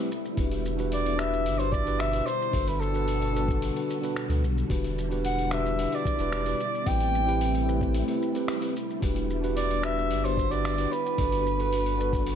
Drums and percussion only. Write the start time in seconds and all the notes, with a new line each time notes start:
0.12 shaker
0.25 shaker
0.37 kick, open hi-hat, shaker
0.52 open hi-hat
0.66 shaker
0.79 open hi-hat, shaker
0.92 open hi-hat, shaker
1.06 open hi-hat
1.19 finger snap, shaker
1.33 shaker
1.46 open hi-hat, shaker
1.60 open hi-hat
1.72 kick, shaker
1.87 open hi-hat, shaker
2.00 finger snap, open hi-hat, shaker
2.13 open hi-hat
2.28 shaker
2.42 shaker
2.53 kick, open hi-hat, shaker
2.68 open hi-hat
2.82 shaker
2.94 open hi-hat, shaker
3.08 open hi-hat, shaker
3.22 open hi-hat
3.36 shaker
3.48 kick, shaker
3.62 open hi-hat, shaker
3.76 open hi-hat
3.90 shaker
4.03 open hi-hat, shaker
4.16 finger snap, open hi-hat, shaker
4.30 open hi-hat
4.44 shaker
4.58 shaker
4.70 kick, open hi-hat, shaker
4.84 open hi-hat
4.98 shaker
5.11 open hi-hat, shaker
5.25 open hi-hat, shaker
5.38 open hi-hat
5.51 finger snap, shaker
5.66 shaker
5.79 open hi-hat, shaker
5.92 open hi-hat
6.05 kick, shaker
6.19 open hi-hat, shaker
6.33 finger snap, open hi-hat, shaker
6.46 open hi-hat
6.60 shaker
6.75 shaker
6.87 kick, open hi-hat, shaker
7.00 open hi-hat
7.15 shaker
7.28 open hi-hat, shaker
7.41 open hi-hat, shaker
7.55 open hi-hat
7.69 shaker
7.81 kick, shaker
7.94 open hi-hat, shaker
8.08 open hi-hat
8.22 shaker
8.35 open hi-hat, shaker
8.48 finger snap, open hi-hat, shaker
8.62 open hi-hat
8.76 shaker
8.90 shaker
9.02 kick, open hi-hat, shaker
9.16 open hi-hat
9.30 shaker
9.44 open hi-hat, shaker
9.57 open hi-hat, shaker
9.71 open hi-hat
9.83 finger snap, shaker
9.99 shaker
10.11 open hi-hat, shaker
10.25 open hi-hat
10.37 kick, shaker
10.52 open hi-hat, shaker
10.65 finger snap, open hi-hat, shaker
10.78 open hi-hat
10.93 shaker
11.06 shaker
11.18 kick, open hi-hat, shaker
11.32 open hi-hat
11.46 shaker
11.59 open hi-hat, shaker
11.73 open hi-hat, shaker
11.86 open hi-hat
12.00 shaker
12.13 kick, open hi-hat, shaker
12.27 open hi-hat, shaker